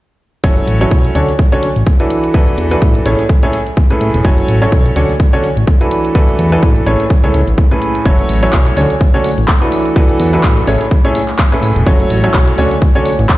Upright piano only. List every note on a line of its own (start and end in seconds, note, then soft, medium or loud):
0.44 0.78 F#3 medium
0.44 0.78 C#4 medium
0.44 0.78 E4 medium
0.44 0.78 F#4 medium
0.44 0.78 A4 medium
0.44 0.78 C#5 loud
0.81 1.13 F#3 medium
0.81 1.13 C#4 medium
0.81 1.13 E4 medium
0.81 1.13 F#4 medium
0.81 1.13 A4 medium
0.81 1.13 C#5 loud
1.15 1.30 D3 medium
1.15 1.30 C#4 medium
1.15 1.30 D4 medium
1.15 1.30 F#4 medium
1.15 1.30 A4 medium
1.15 1.30 C#5 medium
1.52 1.65 D3 medium
1.52 1.65 C#4 medium
1.52 1.65 D4 medium
1.52 1.65 F#4 medium
1.52 1.65 A4 medium
1.52 1.65 C#5 loud
2.00 2.32 E3 medium
2.00 2.32 D4 medium
2.00 2.32 E4 medium
2.00 2.32 F#4 medium
2.00 2.32 A4 medium
2.00 2.32 B4 medium
2.34 2.68 E3 medium
2.34 2.68 D4 medium
2.34 2.68 E4 medium
2.34 2.68 F#4 medium
2.34 2.68 A4 medium
2.34 2.68 B4 loud
2.71 3.03 E3 medium
2.71 3.03 D4 medium
2.71 3.03 E4 medium
2.71 3.03 F#4 medium
2.71 3.03 A4 medium
2.71 3.03 B4 loud
3.06 3.21 A2 medium
3.06 3.21 C#4 medium
3.06 3.21 E4 medium
3.06 3.21 G#4 medium
3.06 3.21 A4 medium
3.06 3.21 C#5 medium
3.43 3.55 A2 medium
3.43 3.55 C#4 medium
3.43 3.55 E4 medium
3.43 3.55 G#4 medium
3.43 3.55 A4 medium
3.43 3.55 C#5 loud
3.90 4.22 A2 medium
3.90 4.22 C#4 medium
3.90 4.22 E4 medium
3.90 4.22 G#4 medium
3.90 4.22 A4 medium
3.90 4.22 B4 medium
4.25 4.59 F#3 medium
4.25 4.59 C#4 medium
4.25 4.59 E4 medium
4.25 4.59 F#4 medium
4.25 4.59 A4 medium
4.25 4.59 C#5 loud
4.62 4.94 F#3 medium
4.62 4.94 C#4 medium
4.62 4.94 E4 medium
4.62 4.94 F#4 medium
4.62 4.94 A4 medium
4.62 4.94 C#5 loud
4.96 5.11 D3 medium
4.96 5.11 C#4 medium
4.96 5.11 D4 medium
4.96 5.11 F#4 medium
4.96 5.11 A4 medium
4.96 5.11 C#5 medium
5.33 5.46 D3 medium
5.33 5.46 C#4 medium
5.33 5.46 D4 medium
5.33 5.46 F#4 medium
5.33 5.46 A4 medium
5.33 5.46 C#5 loud
5.81 6.13 E3 medium
5.81 6.13 D4 medium
5.81 6.13 E4 medium
5.81 6.13 F#4 medium
5.81 6.13 A4 medium
5.81 6.13 B4 medium
6.15 6.49 E3 loud
6.15 6.49 D4 medium
6.15 6.49 E4 medium
6.15 6.49 F#4 medium
6.15 6.49 A4 medium
6.15 6.49 B4 loud
6.52 6.84 E3 medium
6.52 6.84 D4 medium
6.52 6.84 E4 medium
6.52 6.84 F#4 medium
6.52 6.84 A4 medium
6.52 6.84 B4 loud
6.86 7.02 A2 medium
6.86 7.02 C#4 medium
6.86 7.02 E4 medium
6.86 7.02 G#4 medium
6.86 7.02 A4 medium
6.86 7.02 C#5 medium
7.24 7.36 A2 medium
7.24 7.36 C#4 medium
7.24 7.36 E4 medium
7.24 7.36 G#4 medium
7.24 7.36 A4 medium
7.24 7.36 C#5 loud
7.71 8.03 A2 medium
7.71 8.03 C#4 medium
7.71 8.03 E4 medium
7.71 8.03 G#4 medium
7.71 8.03 A4 medium
7.71 8.03 B4 medium
8.05 8.39 F#3 medium
8.05 8.39 C#4 medium
8.05 8.39 E4 medium
8.05 8.40 F#4 medium
8.05 8.40 A4 medium
8.05 8.39 C#5 loud
8.43 8.74 F#3 medium
8.43 8.74 C#4 medium
8.43 8.74 E4 medium
8.43 8.75 F#4 medium
8.43 8.74 A4 medium
8.43 8.74 C#5 loud
8.77 8.92 D3 medium
8.77 8.92 C#4 medium
8.77 8.92 D4 medium
8.77 8.92 F#4 medium
8.77 8.92 A4 medium
8.77 8.92 C#5 medium
9.14 9.27 D3 medium
9.14 9.27 C#4 medium
9.14 9.27 D4 medium
9.14 9.27 F#4 medium
9.14 9.27 A4 medium
9.14 9.27 C#5 loud
9.62 9.93 E3 medium
9.62 9.93 D4 medium
9.62 9.93 E4 medium
9.62 9.93 F#4 medium
9.62 9.93 A4 medium
9.62 9.93 B4 medium
9.96 10.30 E3 medium
9.96 10.30 D4 medium
9.96 10.30 E4 medium
9.96 10.30 F#4 medium
9.96 10.30 A4 medium
9.96 10.30 B4 loud
10.33 10.65 E3 medium
10.33 10.65 D4 medium
10.33 10.65 E4 medium
10.33 10.65 F#4 medium
10.33 10.65 A4 medium
10.33 10.65 B4 loud
10.67 10.83 A2 medium
10.67 10.83 C#4 medium
10.67 10.83 E4 medium
10.67 10.83 G#4 medium
10.67 10.83 A4 medium
10.67 10.83 C#5 medium
11.05 11.17 A2 medium
11.05 11.17 C#4 medium
11.05 11.17 E4 medium
11.05 11.17 G#4 medium
11.05 11.17 A4 medium
11.05 11.17 C#5 loud
11.52 11.84 A2 medium
11.52 11.84 C#4 medium
11.52 11.84 E4 medium
11.52 11.84 G#4 medium
11.52 11.84 A4 medium
11.52 11.84 B4 medium
11.86 12.21 F#3 loud
11.86 12.21 C#4 medium
11.86 12.21 E4 medium
11.86 12.21 F#4 medium
11.86 12.21 A4 medium
11.86 12.21 C#5 loud
12.24 12.56 F#3 medium
12.24 12.56 C#4 medium
12.24 12.56 E4 medium
12.24 12.56 F#4 medium
12.24 12.56 A4 medium
12.24 12.56 C#5 loud
12.58 12.73 D3 medium
12.58 12.73 C#4 medium
12.58 12.73 D4 medium
12.58 12.73 F#4 medium
12.58 12.73 A4 medium
12.58 12.73 C#5 medium
12.95 13.08 D3 medium
12.95 13.08 C#4 medium
12.95 13.08 D4 medium
12.95 13.08 F#4 medium
12.95 13.08 A4 medium
12.95 13.08 C#5 loud